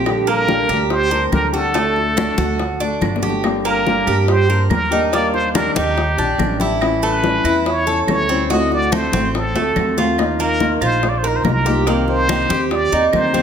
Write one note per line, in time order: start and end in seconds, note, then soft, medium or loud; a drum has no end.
0.00 0.63 A#1 medium
0.00 0.26 G4 medium
0.05 0.46 D3 medium
0.05 0.47 G3 medium
0.05 0.48 D4 medium
0.05 0.48 G4 medium
0.05 high bongo medium
0.05 high conga soft
0.05 claves medium
0.27 0.68 A#3 medium
0.27 0.92 A#4 loud
0.27 high bongo soft
0.27 high conga soft
0.48 0.68 D3 medium
0.48 0.69 G3 medium
0.48 0.69 D4 medium
0.48 0.68 G4 medium
0.48 high bongo medium
0.48 high conga medium
0.69 1.28 D2 medium
0.69 0.90 G3 soft
0.69 0.90 D4 soft
0.69 0.89 G4 soft
0.69 1.10 G4 medium
0.69 high conga soft
0.69 claves medium
0.90 1.34 C5 loud
0.90 muted nylon-string guitar stroke medium
0.90 high bongo medium
0.90 high conga soft
1.11 1.32 G3 soft
1.11 1.32 D4 soft
1.11 1.31 G4 soft
1.11 1.52 A#4 medium
1.11 high bongo soft
1.11 high conga soft
1.32 2.32 D2 medium
1.32 1.53 D3 soft
1.32 1.53 G3 soft
1.32 1.53 D4 soft
1.32 1.52 G4 medium
1.32 1.52 A#4 medium
1.32 high bongo soft
1.32 low bongo medium
1.32 high conga medium
1.32 claves medium
1.53 1.74 G3 medium
1.53 1.74 D4 medium
1.53 1.74 F#4 medium
1.53 1.74 G4 medium
1.53 2.97 A4 medium
1.53 high bongo soft
1.74 2.15 D3 medium
1.74 2.15 A3 medium
1.74 2.16 D4 medium
1.74 2.16 F#4 medium
1.74 high bongo medium
1.74 high conga soft
1.96 high bongo soft
1.96 high conga soft
2.16 2.37 D3 medium
2.16 2.37 A3 medium
2.16 2.38 D4 medium
2.16 2.37 D4 medium
2.16 2.36 F#4 medium
2.16 high bongo medium
2.16 high conga medium
2.16 claves medium
2.37 2.97 D2 medium
2.37 2.58 A3 soft
2.37 2.59 D4 soft
2.37 2.58 F#4 soft
2.37 2.79 F#4 medium
2.37 high conga medium
2.59 muted nylon-string guitar stroke medium
2.59 high bongo medium
2.59 high conga soft
2.80 3.01 A3 soft
2.80 3.21 D4 medium
2.80 3.01 D4 soft
2.80 3.01 F#4 soft
2.80 high bongo soft
2.80 high conga soft
3.01 4.01 G1 medium
3.01 3.21 D3 soft
3.01 3.22 A3 soft
3.01 3.22 D4 medium
3.01 3.21 F#4 medium
3.01 high bongo medium
3.01 high conga medium
3.01 claves medium
3.16 low bongo medium
3.22 3.44 A3 medium
3.22 3.43 D4 medium
3.22 3.43 F#4 medium
3.22 3.43 G4 medium
3.22 high conga medium
3.30 low bongo medium
3.43 3.84 D3 medium
3.43 3.85 G3 medium
3.43 3.85 A#3 medium
3.43 3.86 D4 medium
3.43 3.86 G4 medium
3.43 high bongo medium
3.43 high conga soft
3.43 claves medium
3.65 4.06 A#3 medium
3.65 4.29 A#4 medium
3.65 high bongo soft
3.65 high conga soft
3.85 4.06 D3 medium
3.85 4.06 G3 medium
3.85 4.07 A#3 medium
3.85 4.07 D4 medium
3.85 4.06 G4 medium
3.85 high bongo medium
3.85 high conga medium
4.07 4.66 G2 medium
4.07 4.28 A#3 soft
4.07 4.28 D4 soft
4.07 4.27 G4 soft
4.07 4.48 G4 medium
4.07 high conga soft
4.07 claves medium
4.28 4.69 C5 medium
4.28 muted nylon-string guitar stroke medium
4.28 high bongo medium
4.28 high conga soft
4.49 4.70 A#3 soft
4.49 4.70 D4 soft
4.49 4.69 G4 soft
4.49 4.90 A#4 medium
4.49 high bongo soft
4.49 high conga soft
4.69 5.69 D#2 medium
4.69 4.91 G3 soft
4.69 4.91 A#3 soft
4.69 4.90 D4 soft
4.69 4.90 G4 soft
4.69 5.09 A#4 medium
4.69 high bongo soft
4.69 low bongo medium
4.69 high conga medium
4.69 claves medium
4.91 5.11 G3 medium
4.91 5.12 A#3 medium
4.91 5.12 D4 medium
4.91 5.12 D#4 medium
4.91 5.11 G4 medium
4.91 high bongo soft
5.12 5.53 D#3 medium
5.12 5.53 G3 medium
5.12 5.54 A#3 medium
5.12 5.54 D4 medium
5.12 5.55 G4 medium
5.12 5.32 D5 loud
5.12 high bongo medium
5.12 high conga soft
5.33 5.53 C5 medium
5.33 high bongo soft
5.33 high conga soft
5.54 5.75 D#3 medium
5.54 5.75 G3 medium
5.54 5.75 D4 medium
5.54 5.74 G4 medium
5.54 5.78 A#4 medium
5.54 high bongo medium
5.54 high conga medium
5.54 claves medium
5.75 6.15 D#2 medium
5.75 5.96 G3 soft
5.75 5.96 D4 soft
5.75 6.17 D#4 medium
5.75 5.96 G4 soft
5.75 6.60 G4 medium
5.75 high conga medium
5.97 muted nylon-string guitar stroke medium
5.97 high bongo medium
5.97 high conga soft
6.17 6.37 A#1 medium
6.17 6.38 G3 soft
6.17 6.59 D4 medium
6.17 6.39 D4 soft
6.17 6.38 G4 soft
6.17 high bongo soft
6.17 high conga soft
6.38 7.38 A1 medium
6.38 6.59 D#3 soft
6.38 6.59 G3 soft
6.38 6.60 D4 soft
6.38 6.59 G4 medium
6.38 high bongo soft
6.38 low bongo medium
6.38 high conga medium
6.38 claves medium
6.60 6.80 G3 medium
6.60 6.81 D4 medium
6.60 7.01 E4 medium
6.60 6.80 G4 medium
6.60 high bongo soft
6.60 high conga medium
6.80 7.22 E3 medium
6.80 7.23 G3 medium
6.80 7.23 C#4 medium
6.80 7.23 E4 medium
6.80 high bongo medium
6.80 high conga soft
6.80 claves medium
7.02 7.44 A3 medium
7.02 7.69 B4 medium
7.02 high bongo soft
7.02 high conga soft
7.23 7.43 E3 medium
7.23 7.44 G3 medium
7.23 7.44 C#4 medium
7.23 7.43 E4 medium
7.23 high bongo medium
7.23 high conga medium
7.44 8.04 E2 medium
7.44 7.65 G3 soft
7.44 7.65 C#4 soft
7.44 7.65 E4 soft
7.44 7.86 E4 medium
7.44 high conga soft
7.44 claves medium
7.66 8.09 C#5 loud
7.66 muted nylon-string guitar stroke medium
7.66 high bongo medium
7.66 high conga soft
7.87 8.08 G3 soft
7.87 8.08 C#4 soft
7.87 8.07 E4 soft
7.87 8.28 A4 medium
7.87 high bongo soft
7.87 high conga soft
8.07 9.07 D2 medium
8.07 8.28 E3 soft
8.07 8.29 G3 medium
8.07 8.29 C#4 medium
8.07 8.28 E4 soft
8.07 8.48 C#5 loud
8.07 high bongo soft
8.07 low bongo medium
8.07 high conga medium
8.07 claves medium
8.29 8.50 G3 medium
8.29 8.50 C4 medium
8.29 8.50 C#4 medium
8.29 8.49 E4 medium
8.29 high bongo soft
8.50 8.91 D3 medium
8.50 8.92 A3 medium
8.50 8.92 C4 medium
8.50 8.91 F#4 medium
8.50 8.93 F#4 medium
8.50 8.71 D#5 loud
8.50 high bongo medium
8.50 high conga soft
8.72 8.96 D5 loud
8.72 high bongo soft
8.72 high conga soft
8.92 9.13 D3 medium
8.92 9.13 A3 medium
8.92 9.13 C4 medium
8.92 9.12 F#4 medium
8.92 9.38 C5 medium
8.92 high bongo medium
8.92 high conga medium
8.92 claves medium
9.12 9.52 A1 medium
9.12 9.33 A3 soft
9.12 9.54 C4 medium
9.12 9.34 C4 soft
9.12 9.34 F#4 soft
9.12 high conga medium
9.34 9.99 A4 medium
9.34 muted nylon-string guitar stroke medium
9.34 high bongo medium
9.34 high conga soft
9.55 9.75 D2 medium
9.55 9.96 A3 medium
9.55 9.76 A3 soft
9.55 9.76 C4 soft
9.55 9.76 F#4 soft
9.55 high bongo medium
9.55 high conga soft
9.76 10.75 D#2 medium
9.76 9.97 D3 soft
9.76 9.97 A3 soft
9.76 9.97 C4 soft
9.76 9.96 F#4 medium
9.76 low bongo medium
9.76 high conga medium
9.76 claves medium
9.97 10.18 A3 medium
9.97 10.18 C4 medium
9.97 10.39 F4 medium
9.97 10.18 F#4 medium
9.97 low bongo medium
10.18 10.58 D#3 medium
10.18 10.59 A#3 medium
10.18 10.60 D#4 medium
10.18 10.60 F4 medium
10.18 10.61 A#4 medium
10.18 high bongo medium
10.18 high conga soft
10.18 claves medium
10.39 10.81 A#3 medium
10.39 10.80 A#4 medium
10.39 high bongo soft
10.39 high conga soft
10.60 10.80 D#3 medium
10.60 10.81 A#3 medium
10.60 10.81 D#4 medium
10.60 10.81 F4 medium
10.60 10.79 A#4 medium
10.60 high bongo medium
10.60 high conga medium
10.81 11.41 A#1 medium
10.81 11.01 D#4 soft
10.81 11.23 F4 medium
10.81 11.02 F4 soft
10.81 11.01 A#4 soft
10.81 11.10 C5 medium
10.81 high conga soft
10.81 claves medium
11.02 muted nylon-string guitar stroke medium
11.02 high bongo medium
11.02 high conga soft
11.09 11.19 D5 medium
11.18 11.29 C5 medium
11.23 11.43 D#4 soft
11.23 11.44 F4 soft
11.23 11.44 A#4 soft
11.23 11.65 A#4 medium
11.23 high bongo soft
11.23 high conga soft
11.27 11.37 A#4 medium
11.36 11.44 C5 medium
11.44 12.43 C2 medium
11.44 11.65 A#3 soft
11.44 11.65 D#4 soft
11.44 11.64 F4 medium
11.44 11.84 A#4 medium
11.44 11.64 A#4 soft
11.44 high bongo soft
11.44 low bongo medium
11.44 high conga medium
11.44 claves medium
11.65 11.86 A#3 medium
11.65 11.86 D#4 medium
11.65 11.86 F4 medium
11.65 11.86 G4 medium
11.65 11.86 A#4 medium
11.65 high bongo soft
11.86 12.27 C3 medium
11.86 12.28 D#3 medium
11.86 12.28 A#3 medium
11.86 12.28 C4 medium
11.86 12.29 G4 medium
11.86 high bongo medium
11.86 high conga soft
12.08 12.73 C5 loud
12.08 high bongo soft
12.08 high conga soft
12.28 12.49 C3 medium
12.28 12.49 D#3 medium
12.28 12.50 A#3 medium
12.28 12.49 C4 medium
12.28 12.50 D#4 medium
12.28 12.47 G4 medium
12.28 high bongo medium
12.28 high conga medium
12.28 claves medium
12.49 12.89 D#2 medium
12.49 12.70 A#3 soft
12.49 12.70 C4 soft
12.49 12.70 G4 soft
12.49 12.91 G4 medium
12.49 high conga medium
12.71 13.13 D5 loud
12.71 muted nylon-string guitar stroke medium
12.71 high bongo medium
12.71 high conga soft
12.92 13.12 D#2 medium
12.92 13.12 A#3 soft
12.92 13.13 C4 soft
12.92 13.33 D#4 medium
12.92 13.12 G4 soft
12.92 high bongo soft
12.92 high conga soft
13.12 13.42 D2 medium
13.12 13.33 D#3 soft
13.12 13.33 A#3 medium
13.12 13.33 C4 soft
13.12 13.32 G4 medium
13.12 13.42 C5 medium
13.12 high bongo soft
13.12 low bongo medium
13.12 high conga medium
13.12 claves medium
13.33 13.42 D#3 medium
13.33 13.42 A#3 medium
13.33 13.42 C4 medium
13.33 13.42 G4 medium
13.33 high bongo soft
13.33 high conga medium